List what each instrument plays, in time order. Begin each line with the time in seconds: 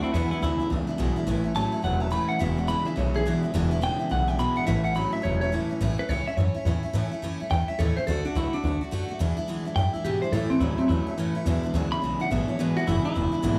Already playing: clean electric guitar D3 A3
0.02 steel-string acoustic guitar A3 D4 F#4, clean electric guitar C4 E4, muted upright bass stroke
0.13 upright bass E2, steel-string acoustic guitar E2 B2 E3 G#3 D4 E4, clean electric guitar B3 E4
0.31 steel-string acoustic guitar E3 G#3 D4 E4, clean electric guitar B3 E4, muted upright bass stroke
0.42 upright bass D2, steel-string acoustic guitar E2 B2 E3 G#3 D4 E4, clean electric guitar C#3 E4
0.59 steel-string acoustic guitar E3 G#3 D4 E4, muted upright bass stroke
0.70 upright bass C#2, clean electric guitar E2 C#3, steel-string acoustic guitar E3 G#3 D4 E4
0.87 steel-string acoustic guitar E3 G#3 D4 E4, muted upright bass stroke
0.98 upright bass B1, steel-string acoustic guitar E2 B2 E3 G#3 D4 E4
1.16 steel-string acoustic guitar E3 G#3 D4 E4, muted upright bass stroke
1.26 upright bass A1, steel-string acoustic guitar A2 E3 A3 C#4 E4
1.44 steel-string acoustic guitar A3 C#4 E4
1.55 steel-string acoustic guitar A2 E3 A3 C#4 E4, clean electric guitar F#3 A5
1.72 steel-string acoustic guitar A3 C#4 E4, muted upright bass stroke
1.82 upright bass E1, clean electric guitar A2 F#3 F#5, steel-string acoustic guitar E3 A3 C#4 E4
2.00 steel-string acoustic guitar A3 C#4 E4, clean electric guitar A5
2.11 steel-string acoustic guitar A2 E3 A3 C#4 E4, clean electric guitar B5
2.28 steel-string acoustic guitar A3 C#4 E4, clean electric guitar F#5, muted upright bass stroke
2.39 upright bass E1, steel-string acoustic guitar E2 B2 E3 G#3 D4 E4, clean electric guitar E5
2.57 steel-string acoustic guitar E3 G#3 D4 E4, clean electric guitar F#5
2.67 steel-string acoustic guitar E2 B2 E3 G#3 D4 E4, clean electric guitar C#3 B5
2.85 steel-string acoustic guitar E3 G#3 D4 E4, clean electric guitar E5, muted upright bass stroke
2.96 upright bass B1, clean electric guitar E2 C#3 C#5, steel-string acoustic guitar E3 G#3 D4 E4
3.14 steel-string acoustic guitar E3 G#3 D4 E4, clean electric guitar G#4
3.26 steel-string acoustic guitar E2 B2 E3 G#3 D4 E4
3.43 steel-string acoustic guitar E3 G#3 D4 E4, muted upright bass stroke
3.54 upright bass E1, steel-string acoustic guitar E2 B2 E3 G#3 D4 E4
3.71 steel-string acoustic guitar E3 G#3 D4 E4
3.81 steel-string acoustic guitar E2 B2 E3 G#3 D4 E4, clean electric guitar C#3 G5
3.99 steel-string acoustic guitar E3 G#3 D4 E4, muted upright bass stroke
4.10 upright bass B1, clean electric guitar E2 C#3 F#5, steel-string acoustic guitar E3 G#3 D4 E4
4.28 steel-string acoustic guitar E3 G#3 D4 E4, clean electric guitar G5
4.39 steel-string acoustic guitar E2 B2 E3 G#3 D4 E4, clean electric guitar B5
4.56 steel-string acoustic guitar E3 G#3 D4 E4, clean electric guitar F#5, muted upright bass stroke
4.67 upright bass A1, steel-string acoustic guitar A2 E3 A3 C#4 E4, clean electric guitar E5
4.84 steel-string acoustic guitar A3 C#4 E4, clean electric guitar F#5
4.95 steel-string acoustic guitar A2 E3 A3 C#4 E4, clean electric guitar F#3 B5
5.12 steel-string acoustic guitar A3 C#4 E4, clean electric guitar E5, muted upright bass stroke
5.22 upright bass E1, clean electric guitar A2 F#3 C#5, steel-string acoustic guitar E3 A3 C#4 E4
5.41 steel-string acoustic guitar A3 C#4 E4, clean electric guitar C#5
5.52 steel-string acoustic guitar A2 E3 A3 C#4 E4
5.69 steel-string acoustic guitar A3 C#4 E4, muted upright bass stroke
5.81 upright bass A1, steel-string acoustic guitar A2 E3 A3 C#4 E4
5.98 steel-string acoustic guitar A3 C#4 E4, clean electric guitar B4, muted upright bass stroke
6.09 upright bass C#2, steel-string acoustic guitar A2 E3 A3 C#4 E4, clean electric guitar C#5
6.27 steel-string acoustic guitar A3 C#4 E4, clean electric guitar E5, muted upright bass stroke
6.37 upright bass F#2, steel-string acoustic guitar E3 A3 C#4 E4, clean electric guitar C#5
6.54 steel-string acoustic guitar A3 C#4 E4, muted upright bass stroke
6.65 upright bass E2, steel-string acoustic guitar A2 E3 A3 C#4 E4
6.83 steel-string acoustic guitar A3 C#4 E4, muted upright bass stroke
6.93 steel-string acoustic guitar A2 E3 A3 C#4 E4, upright bass A2
7.11 steel-string acoustic guitar A3 C#4 E4, muted upright bass stroke
7.22 upright bass F#2, steel-string acoustic guitar A2 E3 A3 C#4 E4
7.40 steel-string acoustic guitar A3 C#4 E4, muted upright bass stroke
7.50 upright bass E2, steel-string acoustic guitar E3 A3 C#4 E4, clean electric guitar G5
7.68 steel-string acoustic guitar A3 C#4 E4, clean electric guitar E5, muted upright bass stroke
7.79 upright bass D#2, steel-string acoustic guitar A2 E3 A3 C#4 E4, clean electric guitar A4
7.96 steel-string acoustic guitar A3 C#4 E4, clean electric guitar C5, muted upright bass stroke
8.07 upright bass D2, steel-string acoustic guitar D3 A3 D4 F#4, clean electric guitar A4
8.25 steel-string acoustic guitar A3 D4 F#4, clean electric guitar D4, muted upright bass stroke
8.35 upright bass C#2, steel-string acoustic guitar D3 A3 D4 F#4, clean electric guitar E4
8.53 steel-string acoustic guitar A3 D4 F#4, clean electric guitar D4, muted upright bass stroke
8.63 upright bass D2, steel-string acoustic guitar D3 A3 D4 F#4, clean electric guitar D4
8.81 steel-string acoustic guitar A3 D4 F#4, muted upright bass stroke
8.91 upright bass F#2, steel-string acoustic guitar D3 A3 D4 F#4
9.08 steel-string acoustic guitar A3 D4 F#4, muted upright bass stroke
9.19 steel-string acoustic guitar E2 B2 E3 G#3 D4 E4, upright bass E2
9.37 steel-string acoustic guitar E3 G#3 D4 E4, muted upright bass stroke
9.48 upright bass D2, steel-string acoustic guitar E2 B2 E3 G#3 D4 E4
9.65 steel-string acoustic guitar E3 G#3 D4 E4, muted upright bass stroke
9.75 upright bass F#2, steel-string acoustic guitar E3 G#3 D4 E4, clean electric guitar G5
9.93 steel-string acoustic guitar E3 G#3 D4 E4, clean electric guitar E5, muted upright bass stroke
10.04 steel-string acoustic guitar E2 B2 E3 G#3 D4 E4, upright bass G#2, clean electric guitar G4
10.22 steel-string acoustic guitar E3 G#3 D4 E4, clean electric guitar C5, muted upright bass stroke
10.32 upright bass A2, steel-string acoustic guitar A2 E3 A3 C#4 E4, clean electric guitar A4
10.50 steel-string acoustic guitar A3 C#4 E4, clean electric guitar C4, muted upright bass stroke
10.60 upright bass D2, steel-string acoustic guitar A2 E3 A3 C#4 E4, clean electric guitar F#3 E4
10.78 steel-string acoustic guitar A3 C#4 E4, clean electric guitar C4, muted upright bass stroke
10.88 upright bass E2, clean electric guitar A2 F#3 E4, steel-string acoustic guitar E3 A3 C#4
10.92 steel-string acoustic guitar E4
11.07 steel-string acoustic guitar A3 C#4 E4, muted upright bass stroke
11.17 upright bass F#2, steel-string acoustic guitar A2 E3 A3 C#4 E4
11.35 steel-string acoustic guitar A3 C#4 E4, muted upright bass stroke
11.46 steel-string acoustic guitar E2 B2 E3 G#3 D4 E4, upright bass E2
11.63 steel-string acoustic guitar E3 G#3 D4 E4, muted upright bass stroke
11.73 upright bass D2, steel-string acoustic guitar E2 B2 E3 G#3 D4 E4, clean electric guitar C#3
11.92 steel-string acoustic guitar E3 G#3 D4 E4, clean electric guitar B5, muted upright bass stroke
12.02 upright bass B1, clean electric guitar E2 C#3, steel-string acoustic guitar E3 G#3 D4 E4
12.20 steel-string acoustic guitar E3 G#3 D4 E4, clean electric guitar F#5, muted upright bass stroke
12.30 upright bass A1, steel-string acoustic guitar E2 B2 E3 G#3 D4 E4, clean electric guitar E5
12.48 steel-string acoustic guitar E3 G#3 D4 E4, clean electric guitar C#5, muted upright bass stroke
12.59 upright bass G#1, steel-string acoustic guitar E2 B2 E3 G#3 D4 E4, clean electric guitar B4
12.76 steel-string acoustic guitar E3 G#3 D4 E4, clean electric guitar F#4, muted upright bass stroke
12.87 upright bass F#1, steel-string acoustic guitar E2 B2 E3 G#3 D4 E4, clean electric guitar C#3 E4
13.04 steel-string acoustic guitar E3 G#3 D4 E4, clean electric guitar E4, muted upright bass stroke
13.14 upright bass E1, clean electric guitar E2 C#3, steel-string acoustic guitar E3 G#3 D4 E4
13.32 steel-string acoustic guitar E3 G#3 D4 E4, muted upright bass stroke
13.42 upright bass G#1, steel-string acoustic guitar E2 B2 E3 G#3 D4 E4